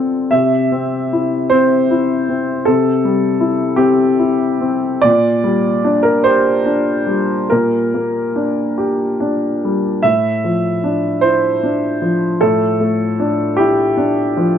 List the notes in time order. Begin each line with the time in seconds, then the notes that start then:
Already playing: D3 C4 F4 A4
0.31 C3 E5
0.72 C4
1.13 E4
1.50 C4 C5
1.91 E4
2.29 C4
2.65 C3 A4
3.05 G3
3.40 E4
3.76 C4 G4
4.19 E4
4.61 C4
5.02 A#2 D5
5.44 G3
5.85 D4
6.03 A#4
6.24 G4 C5
6.66 D4
7.07 G3
7.50 A#2 A#4
7.94 A#3
8.36 D4
8.78 G4
9.20 D4
9.65 G3
10.03 A2 E5
10.44 F3
10.84 D4
11.21 E4 C5
11.63 D4
12.02 F3
12.41 A2 A4
12.80 A3
13.20 D4
13.57 E4 G4
13.97 D4
14.37 F3